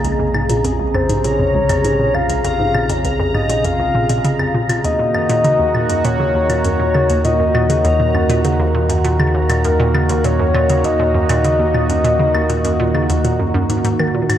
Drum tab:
HH |x--xx--xx--xx--x|x--xx--xx--xx--x|x--xx--xx--xx--x|x--xx--xx--xx--x|
CL |--x---x----x--x-|--x---x------x-x|--x---x----x--x-|--x---x------x-x|

HH |x--xx--xx--xx--x|x--xx--xx--xx--x|
CL |--x---x----x--x-|--x---x------x-x|